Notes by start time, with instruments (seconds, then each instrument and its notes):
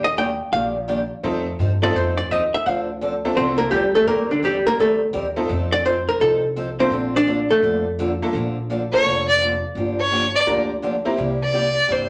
Already playing: upright bass D#2
0.04 hollow-body jazz guitar D#5
0.17 steel-string acoustic guitar D#3 G3 A#3 D4 G4, hollow-body jazz guitar G5
0.52 upright bass A#1, steel-string acoustic guitar D#3 G3 A#3 D4 G4, hollow-body jazz guitar F5
0.88 steel-string acoustic guitar D#3 G3 A#3 D4 G4
1.23 upright bass F2, steel-string acoustic guitar F3 C4 D#4 A4, honky-tonk piano A3 C4 D#4 F4 A4
1.59 upright bass G2, steel-string acoustic guitar F3 C4 D#4 A4
1.82 honky-tonk piano A3 C4 D#4 F4 A4, hollow-body jazz guitar D5
1.94 upright bass F2, steel-string acoustic guitar F3 C4 D#4 A4, hollow-body jazz guitar C5
2.17 hollow-body jazz guitar D5
2.30 upright bass D#2, steel-string acoustic guitar F3 C4 D#4 A4, hollow-body jazz guitar D#5
2.54 hollow-body jazz guitar E5
2.66 upright bass D2, steel-string acoustic guitar D3 F3 C4 D4 A4, hollow-body jazz guitar F5
3.01 steel-string acoustic guitar D3 F3 C4 D4 A4
3.25 honky-tonk piano A3 C4 D4 F4 A4
3.37 upright bass C2, steel-string acoustic guitar D3 F3 C4 D4 A4, hollow-body jazz guitar C4 C5
3.58 hollow-body jazz guitar A#3 A#4
3.71 upright bass D2, steel-string acoustic guitar D3 F3 C4 D4 A4, hollow-body jazz guitar G3 G4
3.95 hollow-body jazz guitar A3 A4
4.07 upright bass D#2, steel-string acoustic guitar D#3 G3 C4 G4 A#4, hollow-body jazz guitar A#3 A#4
4.31 hollow-body jazz guitar D3 D4
4.43 steel-string acoustic guitar D#3 G3 C4 G4 A#4, hollow-body jazz guitar G3 G4
4.67 hollow-body jazz guitar A#3 A#4
4.78 upright bass D2, steel-string acoustic guitar D#3 G3 C4 G4 A#4, hollow-body jazz guitar A3 A4
5.13 upright bass D#2, steel-string acoustic guitar D#3 G3 C4 G4 A#4
5.36 honky-tonk piano A3 C4 D#4 F4 A4
5.49 upright bass F2, steel-string acoustic guitar F3 C4 D#4 A4
5.72 hollow-body jazz guitar D5
5.85 steel-string acoustic guitar F3 C4 D#4 A4, hollow-body jazz guitar C5
6.09 hollow-body jazz guitar A#4
6.20 upright bass C2, steel-string acoustic guitar F3 C4 D#4 A4, hollow-body jazz guitar A4
6.56 steel-string acoustic guitar F3 C4 D#4 A4
6.79 honky-tonk piano A3 A#3 D4 F4 A4, hollow-body jazz guitar C4 C5
6.90 upright bass A#1, steel-string acoustic guitar D3 F3 A#3 D4 A4
7.16 hollow-body jazz guitar D4 D5
7.27 steel-string acoustic guitar D3 F3 A#3 D4 A4
7.50 hollow-body jazz guitar A3 A4
7.62 upright bass F2, steel-string acoustic guitar D3 F3 A#3 D4 A4
7.99 steel-string acoustic guitar D3 F3 A#3 D4 A4
8.22 honky-tonk piano A3 A#3 D4 F4 A4
8.33 upright bass A#1, steel-string acoustic guitar D3 F3 A#3 D4 A4
8.70 steel-string acoustic guitar D3 F3 A#3 D4 A4
8.93 honky-tonk piano A#3 D4 F4 A4 A#4, fiddle C#5
9.04 upright bass F1, steel-string acoustic guitar D3 F3 A#3 D4 A4
9.29 fiddle D5
9.41 steel-string acoustic guitar D3 F3 A#3 D4 A4
9.75 upright bass G1, steel-string acoustic guitar D3 F3 A#3 D4 G4
10.00 fiddle C#5
10.11 steel-string acoustic guitar D3 F3 A#3 D4 G4
10.35 fiddle D5
10.47 upright bass D2, steel-string acoustic guitar D3 F3 A#3 D4 G4, honky-tonk piano A#3 D4 F4 G4 A#4
10.82 steel-string acoustic guitar D3 F3 A#3 D4 G4
11.05 honky-tonk piano A#3 C4 E4 G4 A#4
11.17 upright bass C2, steel-string acoustic guitar C3 G3 A#3 E4 G4
11.43 fiddle D5
11.53 steel-string acoustic guitar C3 G3 A#3 E4 G4
11.88 upright bass G2, steel-string acoustic guitar C3 G3 A#3 E4 G4, fiddle C5